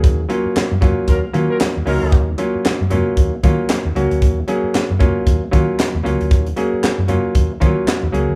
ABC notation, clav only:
X:1
M:4/4
L:1/8
Q:"Swing 16ths" 1/4=115
K:Ebm
V:1 name="Clav"
[G,B,DA] [G,B,DF]2 [G,B,DF]2 [G,B,DF]2 [G,B,DE]- | [G,B,DE] [G,B,DF]2 [G,B,DF]2 [G,B,DF]2 [G,B,DG]- | [G,B,DG] [G,B,DA]2 [G,B,DF]2 [G,B,DF]2 [G,B,DF]- | [G,B,DF] [G,B,DA]2 [G,B,DF]2 [F,G,B,DF]2 [G,B,DA] |]